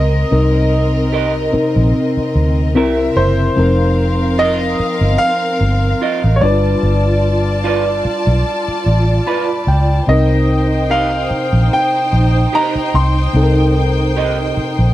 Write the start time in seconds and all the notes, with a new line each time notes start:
Already playing: C#2 C3 C4 D#4 A#4 D#5
0.31 C2 C3 C4 D#4 A#4
1.12 G4 A#4 D#5
1.52 C3 C4 D#4 A#4, muted fingered electric bass stroke
1.76 A#1
2.17 muted fingered electric bass stroke
2.35 D2
2.75 C2 C3 C4 E4 G4 A#4 E5
3.16 F#1 C5
3.56 F1 F3 C4 D#4 A#4 F5
4.38 F4 A#4 D#5
4.80 muted fingered electric bass stroke
5.01 G1
5.18 F5
5.61 G1
6.01 F4 A#4 D#5
6.24 A1
6.36 C#5
6.41 G1 G3 D4 F4 B4 D5 A5
6.83 G1
7.64 F4 B4 D5
8.05 muted fingered electric bass stroke
8.27 B1
8.68 muted fingered electric bass stroke
8.86 A1
9.27 F4 B4 D5 B5
9.67 C#2 G5
10.07 C2 C3 C4 D#4 A#4 C5 D#5 G5
10.90 G4 A#4 D#5 F5
11.31 muted fingered electric bass stroke
11.53 A#1
11.73 G5
12.13 A#1
12.53 G4 A#4 D#5 A#5
12.75 muted fingered electric bass stroke
12.94 C2 C6
13.33 C2 C3 C4 D#4 A4
13.43 A#4
14.16 G4 A#4 D#5
14.57 muted fingered electric bass stroke
14.79 A#1